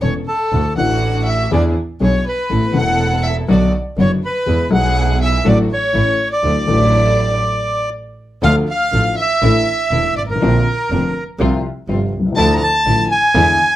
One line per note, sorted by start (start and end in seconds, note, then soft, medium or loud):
0.01 0.23 E1 medium
0.01 0.23 E1 soft
0.01 0.23 E2 soft
0.01 0.23 E3 soft
0.01 0.22 B3 soft
0.01 0.23 B3 soft
0.01 0.22 C#4 soft
0.01 0.23 C#4 soft
0.01 0.22 A4 medium
0.01 0.23 A4 soft
0.01 0.13 C#5 medium
0.01 0.14 C#5 medium
0.27 0.73 A4 medium
0.27 0.74 A4 medium
0.52 0.73 D2 medium
0.52 0.73 D2 soft
0.52 0.73 D3 soft
0.52 0.73 E3 soft
0.52 0.73 A3 soft
0.52 0.73 D4 soft
0.52 0.73 E4 soft
0.52 0.73 F#4 soft
0.75 1.48 A1 medium
0.75 1.48 A2 medium
0.75 1.46 E3 medium
0.75 1.47 A3 medium
0.75 1.47 D4 medium
0.75 1.48 D4 medium
0.75 1.48 E4 medium
0.75 1.48 F#4 medium
0.75 1.22 F#5 medium
0.75 1.28 F#5 medium
0.79 1.49 F#4 medium
1.26 1.49 E5 medium
1.26 1.50 E5 medium
1.50 1.72 E2 medium
1.50 1.72 E3 medium
1.50 1.72 B3 medium
1.50 1.71 D4 medium
1.50 1.72 D4 medium
1.50 1.72 E4 medium
1.50 1.72 G#4 medium
1.50 1.63 D5 medium
1.50 1.64 D5 medium
2.00 2.21 B1 medium
2.00 2.21 B2 soft
2.00 2.21 E3 soft
2.00 2.21 B3 soft
2.00 2.21 D4 soft
2.00 2.21 E4 soft
2.00 2.21 G#4 soft
2.00 2.21 G#4 medium
2.00 2.24 C#5 medium
2.00 2.25 C#5 medium
2.27 2.72 B4 medium
2.27 2.78 B4 medium
2.49 2.71 A1 medium
2.49 2.71 A2 soft
2.49 2.70 E3 soft
2.49 2.71 A3 soft
2.49 2.70 B3 soft
2.49 2.71 B3 soft
2.49 2.70 E4 soft
2.49 2.70 A4 soft
2.49 2.71 A4 soft
2.72 3.44 E1 medium
2.72 3.45 E1 medium
2.72 3.45 E2 medium
2.72 3.43 E3 medium
2.72 3.44 A3 medium
2.72 3.44 B3 medium
2.72 3.45 B3 medium
2.72 3.45 E4 medium
2.72 3.45 A4 medium
2.72 3.21 F#5 medium
2.76 3.46 A4 medium
2.76 3.27 F#5 medium
3.23 3.34 E5 medium
3.23 3.37 E5 medium
3.48 3.69 B1 medium
3.48 3.69 B2 medium
3.48 3.69 D3 medium
3.48 3.69 F#3 medium
3.48 3.69 B3 medium
3.48 3.69 D4 medium
3.48 3.69 F#4 medium
3.48 3.71 D5 medium
3.48 3.73 D5 medium
3.97 4.18 F#1 medium
3.97 4.18 F#1 soft
3.97 4.18 F#2 soft
3.97 4.18 D3 soft
3.97 4.18 F#3 soft
3.97 4.18 B3 soft
3.97 4.18 D4 soft
3.97 4.18 F#4 soft
3.97 4.19 F#4 soft
3.97 4.11 C#5 medium
4.01 4.12 C#5 medium
4.25 4.69 B4 medium
4.46 4.67 E2 medium
4.46 4.68 E2 medium
4.46 4.67 E3 medium
4.46 4.67 G#3 soft
4.46 4.67 B3 soft
4.46 4.67 E4 soft
4.46 4.67 G#4 medium
4.46 4.67 G#4 soft
4.69 5.41 B1 medium
4.69 5.41 B2 medium
4.69 5.40 E3 medium
4.69 5.41 G#3 medium
4.69 5.41 B3 medium
4.69 5.41 E4 medium
4.69 5.41 G#4 loud
4.69 5.42 G#4 medium
4.69 5.18 F#5 medium
4.74 5.19 F#5 medium
5.22 5.44 E5 medium
5.22 5.48 E5 medium
5.44 5.65 A1 medium
5.44 5.65 A2 medium
5.44 5.65 F#3 medium
5.44 5.65 A3 medium
5.44 5.65 D4 medium
5.44 5.65 F#4 medium
5.44 5.66 A4 medium
5.44 5.58 D5 medium
5.44 5.59 D5 medium
5.72 6.28 C#5 medium
5.72 6.29 C#5 medium
5.93 6.14 A1 soft
5.93 6.15 A1 medium
5.93 6.14 A2 medium
5.93 6.14 E3 soft
5.93 6.14 A3 soft
5.93 6.14 C#4 soft
5.93 6.14 E4 medium
5.93 6.15 A4 soft
6.32 7.89 D5 medium
6.32 7.90 D5 loud
6.43 6.64 D2 medium
6.43 6.64 D3 soft
6.43 6.63 E3 soft
6.43 6.63 F#3 soft
6.43 6.64 A3 soft
6.43 6.63 D4 soft
6.43 6.64 D4 soft
6.43 6.64 E4 soft
6.43 6.64 F#4 soft
6.66 7.38 A1 medium
6.66 7.38 A2 medium
6.66 7.37 E3 medium
6.66 7.38 F#3 medium
6.66 7.38 A3 medium
6.66 7.38 D4 medium
6.66 7.39 D4 medium
6.66 7.39 E4 medium
6.66 7.39 F#4 medium
8.42 8.63 D2 medium
8.42 8.64 D3 medium
8.42 8.63 F3 medium
8.42 8.63 A3 medium
8.42 8.64 A3 medium
8.42 8.63 D4 medium
8.42 8.64 D4 medium
8.42 8.64 F4 medium
8.42 8.64 A4 medium
8.42 8.55 F5 medium
8.42 8.56 F5 loud
8.69 9.14 F5 medium
8.69 9.15 F5 medium
8.92 9.13 A1 medium
8.92 9.14 A2 medium
8.92 9.13 F3 soft
8.92 9.13 A3 soft
8.92 9.14 A3 soft
8.92 9.13 D4 soft
8.92 9.14 D4 soft
8.92 9.14 F4 soft
8.92 9.14 A4 medium
9.17 10.12 E5 medium
9.21 10.14 E5 loud
9.42 9.63 A1 medium
9.42 9.63 A2 medium
9.42 9.63 E3 medium
9.42 9.63 A3 medium
9.42 9.63 D4 medium
9.42 9.63 E4 medium
9.42 9.63 A4 medium
9.91 10.12 E1 medium
9.91 10.13 E1 medium
9.91 10.13 E2 soft
9.91 10.13 E3 soft
9.91 10.12 A3 soft
9.91 10.13 A3 soft
9.91 10.12 D4 soft
9.91 10.13 D4 soft
9.91 10.12 E4 medium
9.91 10.13 A4 medium
10.16 10.40 G#1 soft
10.16 10.22 D5 medium
10.16 10.23 D5 medium
10.24 10.29 G1 soft
10.28 10.36 G#1 medium
10.28 11.22 A#4 medium
10.28 11.24 A#4 medium
10.36 10.41 A1 medium
10.41 10.62 A#1 medium
10.41 10.62 A#2 medium
10.41 10.62 D3 medium
10.41 10.62 A#3 medium
10.41 10.62 C4 medium
10.41 10.63 C4 medium
10.41 10.62 D4 medium
10.41 10.63 F4 medium
10.90 11.11 F1 medium
10.90 11.12 F1 medium
10.90 11.12 F2 medium
10.90 11.11 D3 soft
10.90 11.11 A#3 medium
10.90 11.12 A#3 soft
10.90 11.11 C4 soft
10.90 11.12 C4 soft
10.90 11.11 D4 medium
10.90 11.12 F4 medium
11.39 11.60 C2 medium
11.39 11.60 C3 medium
11.39 11.60 F3 medium
11.39 11.60 G3 medium
11.39 11.60 C4 medium
11.39 11.60 F4 medium
11.88 12.08 G1 medium
11.88 12.09 G1 medium
11.88 12.09 G2 medium
11.88 12.09 C3 soft
11.88 12.09 F3 soft
11.88 12.08 G3 soft
11.88 12.09 G3 soft
11.88 12.08 C4 soft
11.88 12.08 F4 medium
11.88 12.09 F4 soft
12.13 12.36 C2 medium
12.20 12.25 B1 soft
12.26 12.31 C2 medium
12.32 12.37 C#2 medium
12.32 12.52 A5 loud
12.37 12.57 D2 medium
12.37 12.57 D2 loud
12.37 12.57 D3 medium
12.37 12.57 F3 medium
12.37 12.57 A3 medium
12.37 12.57 D4 medium
12.37 12.57 E4 medium
12.37 12.55 A5 loud
12.52 12.58 A#5 medium
12.57 13.05 A5 medium
12.57 12.62 A#5 medium
12.64 13.08 A5 loud
12.86 13.06 A1 medium
12.86 13.07 A2 medium
12.86 13.06 D3 medium
12.86 13.06 F3 soft
12.86 13.07 F3 soft
12.86 13.07 A3 soft
12.86 13.06 D4 soft
12.86 13.06 E4 medium
12.86 13.07 E4 medium
13.07 13.76 G#5 medium
13.12 13.76 G#5 loud
13.35 13.55 E2 medium
13.35 13.56 E2 medium
13.35 13.56 D3 medium
13.35 13.55 E3 medium
13.35 13.55 G#3 medium
13.35 13.56 G#3 medium
13.35 13.56 B3 medium
13.35 13.55 D4 medium
13.35 13.55 E4 medium
13.35 13.56 E4 medium